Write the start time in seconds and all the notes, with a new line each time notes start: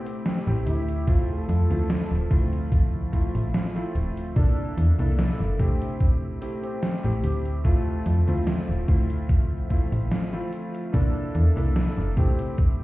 Already playing: A3 C4 E4 G4
0.06 closed hi-hat
0.26 C4, snare, closed hi-hat
0.46 A1 A3 C4 E4 G4, closed hi-hat
0.66 D2 E4, closed hi-hat
0.88 closed hi-hat
1.07 D3 F3 A3 C4 E4 F4 E5, kick, closed hi-hat
1.29 A4
1.49 F2, closed hi-hat
1.69 D2 A3 C4 E4 F4, closed hi-hat
1.90 snare, closed hi-hat
2.12 D1
2.30 D2 A3 C4 E4 F4, kick, closed hi-hat
2.53 closed hi-hat
2.72 kick, closed hi-hat
2.94 C2
3.12 A3 C4 E4 F4, kick, closed hi-hat
3.35 A1, closed hi-hat
3.54 snare, closed hi-hat
3.75 A3 C4 E4 F4, closed hi-hat
3.95 D1, closed hi-hat
4.17 closed hi-hat
4.36 C2 A#2 C3 A#3 D4 E4 A4, kick, closed hi-hat
4.77 E2, closed hi-hat
4.98 C2 A#3 D4 E4 A4, closed hi-hat
5.19 snare, closed hi-hat
5.40 G1
5.59 C2 A3 C4 E4 G4, kick, closed hi-hat
5.82 closed hi-hat
6.00 A3 C4 G4, kick, closed hi-hat
6.41 A3 C4 E4 G4, closed hi-hat
6.64 C4, closed hi-hat
6.83 snare, closed hi-hat
7.03 A1 A3 C4 E4 G4, closed hi-hat
7.24 D2, closed hi-hat
7.46 closed hi-hat
7.64 D3 F3 A3 C4 E4 F4 E5, kick, closed hi-hat
8.06 F2, closed hi-hat
8.27 D2 A3 C4 E4 F4, closed hi-hat
8.47 snare, closed hi-hat
8.69 D1
8.87 D2 A3 C4 E4 F4, kick, closed hi-hat
9.10 closed hi-hat
9.29 kick, closed hi-hat
9.51 C2
9.69 A3 C4 E4 F4, kick, closed hi-hat
9.92 A1, closed hi-hat
10.11 snare, closed hi-hat
10.32 A3 C4 E4 F4, closed hi-hat
10.53 closed hi-hat
10.74 closed hi-hat
10.92 C2 A#2 C3 A#3 D4 E4 A4, kick, closed hi-hat
11.35 E2, closed hi-hat
11.56 C2 A#3 D4 E4 A4, closed hi-hat
11.76 snare, closed hi-hat
11.98 G1
12.16 C2 A3 C4 E4 G4, kick, closed hi-hat
12.39 closed hi-hat
12.58 A3 C4 G4, kick, closed hi-hat